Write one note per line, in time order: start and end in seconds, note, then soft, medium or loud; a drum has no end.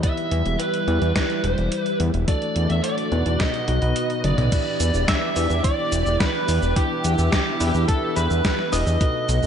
0.03 0.84 E3 medium
0.03 2.26 G3 medium
0.03 0.84 B3 medium
0.03 0.84 E4 medium
0.03 2.26 E4 medium
0.03 0.84 G4 medium
0.03 0.84 B4 medium
0.03 0.61 E5 loud
0.03 kick loud
0.03 closed hi-hat medium
0.17 closed hi-hat soft
0.31 0.43 E2 medium
0.31 closed hi-hat medium
0.46 0.57 E1 medium
0.46 closed hi-hat soft
0.60 1.15 B4 medium
0.60 closed hi-hat medium
0.74 closed hi-hat soft
0.88 0.99 E2 loud
0.88 2.24 E3 medium
0.88 2.24 G3 medium
0.88 2.24 E4 medium
0.88 2.24 G4 medium
0.88 2.24 D5 medium
0.88 closed hi-hat soft
1.02 1.13 E2 medium
1.02 closed hi-hat soft
1.16 1.44 B4 medium
1.16 kick loud
1.16 snare loud
1.16 closed hi-hat medium
1.30 closed hi-hat soft
1.44 1.55 E1 medium
1.44 1.82 C5 medium
1.44 closed hi-hat medium
1.58 1.69 E1 medium
1.58 closed hi-hat soft
1.72 closed hi-hat medium
1.82 1.96 B4 medium
1.82 closed hi-hat soft
2.00 2.11 E2 medium
2.00 closed hi-hat medium
2.14 2.25 E1 medium
2.14 closed hi-hat soft
2.28 3.09 E3 medium
2.28 3.39 A3 medium
2.28 3.09 A3 medium
2.28 3.39 D4 medium
2.28 3.09 D4 medium
2.28 4.50 F#4 medium
2.28 3.09 F#4 medium
2.28 3.09 A4 loud
2.28 3.39 D5 medium
2.28 2.70 D5 loud
2.28 kick loud
2.28 closed hi-hat medium
2.42 closed hi-hat soft
2.56 2.67 E2 loud
2.56 closed hi-hat medium
2.70 2.81 E2 medium
2.70 2.83 E5 loud
2.70 closed hi-hat soft
2.84 3.40 D5 loud
2.84 closed hi-hat medium
2.98 closed hi-hat soft
3.12 3.23 E2 loud
3.12 3.65 B2 loud
3.12 3.65 B3 medium
3.12 3.65 D#4 medium
3.12 3.65 F#4 medium
3.12 3.65 B4 loud
3.12 closed hi-hat soft
3.26 3.37 E2 medium
3.26 closed hi-hat soft
3.40 4.51 B3 medium
3.40 4.51 D#4 medium
3.40 4.20 D#5 loud
3.40 4.51 D#5 medium
3.40 kick loud
3.40 snare loud
3.40 closed hi-hat medium
3.54 closed hi-hat soft
3.68 3.79 B1 loud
3.68 3.79 B2 medium
3.68 3.79 B3 medium
3.68 3.79 D#4 medium
3.68 3.79 F#4 medium
3.68 3.79 B4 medium
3.68 closed hi-hat medium
3.82 3.93 B1 medium
3.82 4.49 B2 medium
3.82 4.49 B3 medium
3.82 4.49 D#4 medium
3.82 4.49 F#4 medium
3.82 4.49 B4 loud
3.82 closed hi-hat soft
3.96 closed hi-hat medium
4.10 closed hi-hat soft
4.24 4.35 F#1 medium
4.24 5.08 D5 loud
4.24 closed hi-hat medium
4.24 high tom medium
4.38 4.49 B1 medium
4.38 closed hi-hat soft
4.38 mid tom medium
4.52 5.33 E3 medium
4.52 8.97 B3 medium
4.52 5.33 D4 medium
4.52 8.97 E4 medium
4.52 5.33 E4 medium
4.52 8.97 G4 medium
4.52 5.33 G4 medium
4.52 5.33 B4 medium
4.52 6.74 D5 medium
4.52 kick loud
4.52 closed hi-hat loud
4.52 crash loud
4.52 cabasa soft
4.80 4.91 E2 medium
4.80 closed hi-hat medium
4.80 cabasa medium
4.94 5.05 E1 medium
4.94 cabasa soft
5.08 5.64 E5 loud
5.08 5.66 E6 loud
5.08 kick loud
5.08 snare loud
5.08 closed hi-hat loud
5.08 cabasa soft
5.36 5.47 E2 loud
5.36 6.73 E3 medium
5.36 6.73 D4 medium
5.36 6.73 E4 medium
5.36 6.73 G4 medium
5.36 6.73 D5 medium
5.36 open hi-hat medium
5.36 cabasa medium
5.50 5.61 E2 medium
5.50 cabasa soft
5.64 6.16 D5 loud
5.64 6.16 D6 loud
5.64 kick loud
5.64 closed hi-hat loud
5.64 cabasa soft
5.92 6.03 E1 loud
5.92 closed hi-hat medium
5.92 cabasa medium
6.06 6.18 E1 medium
6.06 cabasa soft
6.20 6.78 B4 loud
6.20 6.78 B5 loud
6.20 kick loud
6.20 snare loud
6.20 closed hi-hat loud
6.20 cabasa soft
6.48 6.60 E2 medium
6.48 open hi-hat medium
6.48 cabasa medium
6.62 6.74 E1 medium
6.62 cabasa soft
6.76 7.57 E3 medium
6.76 7.57 D4 medium
6.76 7.57 E4 medium
6.76 7.31 G4 loud
6.76 7.57 G4 medium
6.76 7.57 B4 loud
6.76 8.99 E5 medium
6.76 7.31 G5 loud
6.76 kick loud
6.76 closed hi-hat loud
6.76 cabasa soft
7.04 7.16 E2 medium
7.04 closed hi-hat medium
7.04 cabasa medium
7.18 7.30 E2 medium
7.18 cabasa soft
7.32 7.85 G4 medium
7.32 7.84 G5 medium
7.32 kick loud
7.32 snare loud
7.32 closed hi-hat loud
7.32 cabasa soft
7.60 7.72 E2 loud
7.60 8.69 E3 loud
7.60 8.69 D4 medium
7.60 8.69 E4 medium
7.60 8.69 G4 medium
7.60 8.69 B4 loud
7.60 open hi-hat medium
7.60 cabasa medium
7.75 7.86 E2 medium
7.75 cabasa soft
7.88 8.14 A4 loud
7.88 8.14 A5 loud
7.88 kick loud
7.88 closed hi-hat loud
7.88 cabasa soft
8.16 8.28 E2 loud
8.16 8.74 B4 loud
8.16 8.74 B5 loud
8.16 closed hi-hat medium
8.16 cabasa medium
8.31 8.42 E2 medium
8.31 cabasa soft
8.45 kick loud
8.45 snare loud
8.45 closed hi-hat medium
8.45 cabasa soft
8.59 snare soft
8.72 8.84 E1 medium
8.72 8.97 D4 medium
8.72 8.97 E4 medium
8.72 8.97 G4 medium
8.72 8.97 B4 loud
8.72 9.47 D#5 loud
8.72 9.47 D#6 loud
8.72 open hi-hat medium
8.72 cabasa medium
8.87 8.98 E2 medium
8.87 cabasa soft
9.01 9.47 B2 medium
9.01 9.47 A3 medium
9.01 9.47 B3 medium
9.01 9.47 D#4 medium
9.01 9.47 F#4 medium
9.01 9.47 A4 medium
9.01 9.47 B4 medium
9.01 kick loud
9.01 closed hi-hat loud
9.01 cabasa soft
9.29 9.40 B1 loud
9.29 closed hi-hat medium
9.29 cabasa medium
9.43 9.47 F#1 medium
9.43 cabasa soft